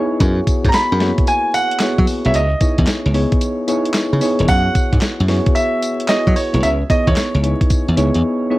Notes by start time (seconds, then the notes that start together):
Already playing: B3 D#4 E4 G#4 C#5
0.20 F#2 B3 E4 F#4 G#4 C#5, kick, closed hi-hat, tambourine
0.47 kick, closed hi-hat, tambourine
0.65 G#2, kick, closed hi-hat
0.69 A#5
0.73 B5, muted slap bass stroke, snare, clap, closed hi-hat, tambourine
0.92 F#2
1.00 A#3 E4 F#4 G#4 C#5, snare, open hi-hat
1.07 B3
1.18 kick, closed hi-hat
1.27 G#5, closed hi-hat, tambourine
1.54 F#5, closed hi-hat, tambourine
1.71 closed hi-hat
1.79 B3 E4 F#4 G#4 C#5, snare, clap, closed hi-hat, tambourine
1.98 F#3, kick
2.07 open hi-hat, tambourine
2.25 B1 B3 E4 F#4 G#4 C#5 E5, closed hi-hat
2.34 C#2 D#5, closed hi-hat, tambourine
2.60 B3 D#4 E4 G#4 C#5, kick, closed hi-hat, tambourine
2.78 E2, kick, closed hi-hat
2.87 muted slap bass stroke, snare, clap, closed hi-hat, tambourine
3.06 C#2
3.14 B3 D#4 E4 G#4 C#5, open hi-hat
3.32 kick, closed hi-hat
3.41 closed hi-hat, tambourine
3.68 B3 D#4 E4 G#4 C#5, closed hi-hat, tambourine
3.85 closed hi-hat
3.94 snare, clap, closed hi-hat, tambourine
4.13 C#3
4.21 B3 D#4 E4 G#4 C#5, open hi-hat, tambourine
4.39 E1, closed hi-hat
4.48 F#2 B3 E4 F#4 G#4 C#5 F#5, kick, closed hi-hat, tambourine
4.75 kick, closed hi-hat, tambourine
4.93 G#2, kick, closed hi-hat
5.01 muted slap bass stroke, snare, clap, closed hi-hat, tambourine
5.20 F#2
5.28 B3 E4 F#4 G#4 C#5, snare, open hi-hat
5.46 kick, closed hi-hat
5.55 E5, closed hi-hat, tambourine
5.82 closed hi-hat, tambourine
6.00 closed hi-hat
6.08 B3 E4 F#4 G#4 C#5 D#5, snare, clap, closed hi-hat, tambourine
6.27 F#3, kick
6.36 C#5, open hi-hat, tambourine
6.53 B1 B3 E4 F#4 G#4 C#5, closed hi-hat
6.63 C#2 E5, closed hi-hat, tambourine
6.90 B3 D#4 E4 G#4 C#5 D#5, kick, closed hi-hat, tambourine
7.07 E2 C#5, kick, closed hi-hat
7.16 muted slap bass stroke, snare, clap, closed hi-hat, tambourine
7.34 C#2
7.43 B3 D#4 E4 G#4 C#5, closed hi-hat
7.61 kick, closed hi-hat
7.70 kick, closed hi-hat, tambourine
7.88 E2
7.96 C#2 B3 D#4 E4 G#4 C#5, closed hi-hat, tambourine
8.14 E2, closed hi-hat
8.50 B3 D#4 E4 G#4 C#5